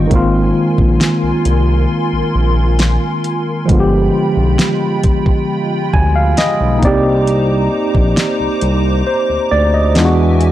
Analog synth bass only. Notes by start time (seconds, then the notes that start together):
0.11 G#1
0.78 A#1
1.23 C2
1.46 C2
2.13 A#1
2.35 A#1
3.69 G1
4.37 B1
5.94 D2
6.61 B1
6.83 C2
7.95 A#1
8.40 C2
8.62 C2
9.29 D2
9.52 D2
9.96 E2